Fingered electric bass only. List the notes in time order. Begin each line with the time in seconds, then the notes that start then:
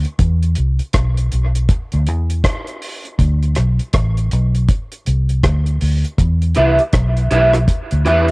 0.20 E2
0.58 C2
0.95 B1
1.33 B1
1.94 D2
2.08 E2
3.20 D2
3.58 B1
3.94 A1
4.33 B1
5.07 C2
5.44 D2
5.82 D2
6.19 E2
6.57 C2
6.94 B1
7.32 B1
7.92 D2
8.07 E2